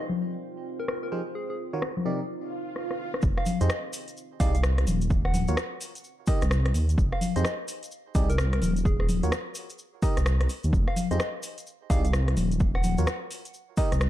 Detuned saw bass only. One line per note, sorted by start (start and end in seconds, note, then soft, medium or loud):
3.23 3.36 F1 loud
3.61 3.69 F2 medium
4.40 4.85 C2 medium
4.87 5.46 D#1 loud
5.48 5.56 D#2 medium
6.42 6.73 C2 medium
6.74 6.96 D#2 medium
6.98 7.11 F1 loud
7.36 7.44 F2 medium
8.15 8.60 C2 medium
8.62 9.21 D#1 medium
9.23 9.31 D#2 medium
10.17 10.48 C2 medium
10.64 10.72 D#2 medium
10.73 10.86 F1 loud
11.11 11.19 F2 medium
11.90 12.35 C2 medium
12.37 12.96 D#1 loud
12.98 13.06 D#2 medium
13.92 14.10 C2 medium